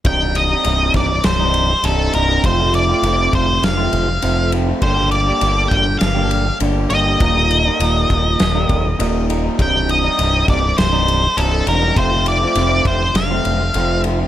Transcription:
<<
  \new Staff \with { instrumentName = "Lead electric guitar" } { \time 4/4 \key c \dorian \tempo 4 = 101 g''8 ees''4 d''8 c''4 a'8 bes'8 | c''8 d''4 c''8 f''4. r8 | c''8 d''4 g''8 f''4 r8 ees''8~ | ees''2.~ ees''8 r8 |
g''8 ees''4 d''8 c''4 a'8 bes'8 | c''8 d''4 c''8 f''4. r8 | }
  \new Staff \with { instrumentName = "Clean electric guitar" } { \clef bass \time 4/4 \key c \dorian <c, g, c g ees'>16 <c g ees'>8 <c g ees'>16 <c, g, c g ees'>8 <g, c g ees'>8. <c g ees'>8. <c, g, c g ees'>8 <g, c g ees'>16 <c g ees'>16 | <f, c f a c' f'>16 <f a c' f'>8 <f a c' f'>16 <f, c f a c' f'>8 <f a c' f'>8. <f a c' f'>8. <f, c f a c' f'>8 <f a c' f'>16 <f a c' f'>16 | <g, d g bes d' g'>16 <g bes d' g'>8 <g bes d' g'>16 <g, d g bes d' g'>8 <g bes d' g'>8. <g bes d' g'>8. <g, d g bes d' g'>8 <g bes d' g'>16 <g bes d' g'>16 | <ees, bes, ees g bes ees'>16 <ees g bes ees'>8 <ees g bes ees'>16 <ees, bes, ees g bes ees'>8 <ees g bes ees'>8. <ees g bes ees'>8. <ees, bes, ees g bes ees'>8 <ees g bes ees'>16 <ees g bes ees'>16 |
<c, g, c g ees'>16 <c g ees'>8 <c g ees'>16 <c, g, c g ees'>8 <g, c g ees'>8. <c g ees'>8. <c, g, c g ees'>8 <g, c g ees'>16 <c g ees'>16 | <f, c f a c' f'>16 <f a c' f'>8 <f a c' f'>16 <f, c f a c' f'>8 <f a c' f'>8. <f a c' f'>8. <f, c f a c' f'>8 <f a c' f'>16 <f a c' f'>16 | }
  \new Staff \with { instrumentName = "Picked electric bass" } { \clef bass \time 4/4 \key c \dorian c,,4 c,,8 c,,8 c,,4 c,,8 c,,8 | f,,4 f,,8 f,,8 f,,8 f,,8 f,,4 | g,,4 g,,8 g,,8 g,,4 g,,8 g,,8 | ees,,4 ees,,8 ees,,8 ees,,8 ees,,8 ees,,4 |
c,,4 c,,8 c,,8 c,,4 c,,8 e,,8 | f,,4 f,,8 f,,8 f,,8 f,,8 f,,4 | }
  \new DrumStaff \with { instrumentName = "Drums" } \drummode { \time 4/4 <bd cymr>8 cymr8 cymr8 <bd cymr sn>8 <cymr sn>8 cymr8 cymr8 cymr8 | <bd cymr>8 cymr8 cymr8 <bd cymr>8 <cymr sn>8 cymr8 cymr8 cymr8 | <bd cymr>8 cymr8 cymr8 <bd cymr>8 <cymr sn>8 cymr8 cymr8 cymr8 | <bd cymr>8 cymr8 cymr8 <bd cymr>8 <cymr sn>8 <bd cymr>8 cymr8 cymr8 |
<bd cymr>8 cymr8 cymr8 <bd cymr sn>8 <cymr sn>8 cymr8 cymr8 cymr8 | <bd cymr>8 cymr8 cymr8 <bd cymr>8 <cymr sn>8 cymr8 cymr8 cymr8 | }
>>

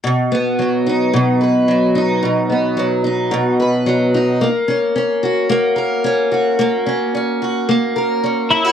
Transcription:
<<
  \new Staff \with { instrumentName = "Clean electric guitar" } { \time 4/4 \key b \major \tempo 4 = 110 r1 | r1 | r1 | r2. r8 e'8 | }
  \new Staff \with { instrumentName = "Steel-string acoustic guitar" } { \time 4/4 \key b \major b,8 b8 fis8 dis'8 b,8 b'8 fis8 dis'8 | b,8 b8 fis8 dis'8 b,8 b'8 fis8 dis'8 | ais8 cis'8 cis'8 fis'8 ais8 ais'8 cis'8 fis'8 | ais8 cis'8 cis'8 fis'8 ais8 ais'8 cis'8 e'16 fis'16 | }
>>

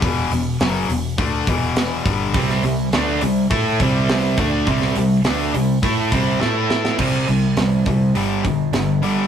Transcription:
<<
  \new Staff \with { instrumentName = "Distorted electric guitar" } { \clef bass \time 4/4 \key c \lydian \tempo 4 = 103 r1 | <c g c'>8 <c g>8 <d a d'>8 <c g>8 <a e' a'>8 <c g c'>4 <d a d'>8 | <c g c'>8 <c g>8 <d a d'>8 <c g>8 <a e' a'>8 <c g c'>8 <a e' a'>4 | <c g c'>8 <c g>8 <c g>8 <c g>8 <g, d g>8 <g, d>8 <g, d>8 <g, d g>8 | }
  \new Staff \with { instrumentName = "Distorted electric guitar" } { \clef bass \time 4/4 \key c \lydian <e, b, e>8 <e, b,>8 <fis, cis fis>8 <e, b,>8 <d a d'>8 <e, b, e>4 <g, d g>8 | <c g c'>8 <c g>8 <d a d'>8 <c g>8 <a e' a'>8 <c g c'>4 <d a d'>8 | <c g c'>8 <c g>8 <d a d'>8 <c g>8 <a e' a'>8 <c g c'>8 <a e' a'>4 | <c g c'>8 <c g>8 <c g>8 <c g>8 <g, d g>8 <g, d>8 <g, d>8 <g, d g>8 | }
  \new Staff \with { instrumentName = "Fingered electric bass" } { \clef bass \time 4/4 \key c \lydian e,,8 e,,8 fis,,8 e,,8 d,8 e,,4 g,,8 | c,8 c,8 d,8 c,8 a,8 c,4 d,8 | c,8 c,8 d,8 c,8 a,8 c,8 a,4 | c,8 c,8 c,8 c,8 g,,4 g,,4 | }
  \new DrumStaff \with { instrumentName = "Drums" } \drummode { \time 4/4 <hho bd>8 hho8 <hho sn>8 hho8 <hho bd>8 <hho bd>8 <hho sn>8 <hho bd>8 | <hho bd>16 sn16 hho8 <hho sn>8 hho8 <hho bd>8 <hho bd>8 <hho sn>8 <hho bd>8 | <hho bd>16 sn16 hho8 <hho sn>8 hho8 <hho bd>8 <hho bd>8 sn8 sn16 sn16 | <cymc bd>8 hho8 <hho sn>8 <hho bd>8 hho8 <hho bd>8 <hho sn>8 hho8 | }
>>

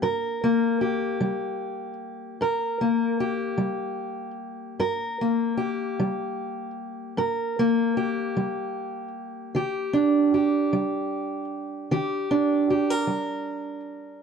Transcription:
\new Staff \with { instrumentName = "Steel-string acoustic guitar" } { \time 12/8 \key g \minor \tempo 4. = 51 << { <bes bes'>8 bes8 g'2 bes'8 bes8 g'2 | bes'8 bes8 g'2 bes'8 bes8 g'2 | g'8 d'8 g'2 g'8 d'8 g'16 bes'4.~ bes'16 | } \\ { g,4 r8 g4 r8 g,4 r8 g4 r8 | g,4 r8 g4 r8 g,4 r8 g4 r8 | ees4 r8 g4 r8 ees4 r8 g4 r8 | } >> }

